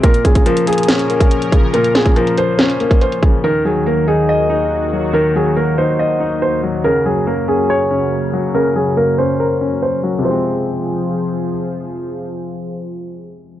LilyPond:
<<
  \new Staff \with { instrumentName = "Felt piano" } { \time 4/4 \key f \phrygian \tempo 4 = 141 bes'8 aes'8 bes'8 aes'2~ aes'8 | bes'8 aes'8 bes'8 c''4. c''8 r8 | bes'8 aes'8 bes'8 aes'2~ aes'8 | bes'8 aes'8 bes'8 c''4. c''8 r8 |
bes'8 aes'8 bes'8 aes'2~ aes'8 | bes'8 aes'8 bes'8 c''4. c''8 r8 | c''2. r4 | r1 | }
  \new Staff \with { instrumentName = "Grand piano" } { \time 4/4 \key f \phrygian bes,8 des8 f8 bes8 des'8 bes4 des8 | bes,8 des8 f8 bes8 des'8 bes4 des8 | ees8 ges8 bes8 ees'8 ees''8 ees'4 ges8 | ees8 ges8 bes8 ees'8 ees''8 ees'4 ges8 |
des8 ges8 bes8 des'8 des''8 des'4 ges8 | des8 ges8 bes8 des'8 bes'8 des'4 ges8 | <c f aes c'>1~ | <c f aes c'>1 | }
  \new Staff \with { instrumentName = "Analog synth pad" } { \clef bass \time 4/4 \key f \phrygian << { <des' bes'>1~ | <des' bes'>1 | <bes ges'>1~ | <bes ges'>1~ |
<bes ges'>1~ | <bes ges'>1 | <f f' aes' c''>1~ | <f f' aes' c''>1 | } \\ { <bes, f>1~ | <bes, f>1 | <ees, ees>1~ | <ees, ees>1 |
<ges, des>1~ | <ges, des>1 | r1 | r1 | } >> }
  \new DrumStaff \with { instrumentName = "Drums" } \drummode { \time 4/4 <hh bd>16 hh16 <hh bd>16 <hh bd>16 hh16 hh16 hh32 hh32 hh32 hh32 <hh sn>16 hh16 hh16 <hh bd>16 hh16 hh16 <hh bd>8 | hh16 hh16 <hh sn>16 <hh bd>16 hh16 hh16 hh8 <hh sn>16 hh16 hh16 <hh bd>16 hh16 hh16 <hh bd>8 | r4 r4 r4 r4 | r4 r4 r4 r4 |
r4 r4 r4 r4 | r4 r4 r4 r4 | r4 r4 r4 r4 | r4 r4 r4 r4 | }
>>